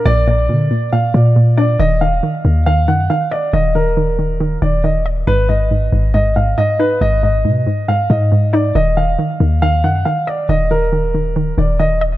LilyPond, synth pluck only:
\new Staff \with { instrumentName = "Synth pluck" } { \clef bass \time 4/4 \key ees \minor \tempo 4 = 138 <bes, d'>8 bes,8 bes,8 bes,8 bes,8 bes,8 bes,8 d'8 | ees8 ees8 ees8 ees8 ees8 ees8 ees8 ees''8 | ees8 ees8 ees8 ees8 ees8 ees8 ees8 ees''8 | aes,8 aes,8 aes,8 aes,8 aes,8 aes,8 aes,8 ees'8 |
aes,8 aes,8 aes,8 aes,8 aes,8 aes,8 aes,8 ees'8 | ees8 ees8 ees8 ees8 ees8 ees8 ees8 ees''8 | ees8 ees8 ees8 ees8 ees8 ees8 ees8 ees''8 | }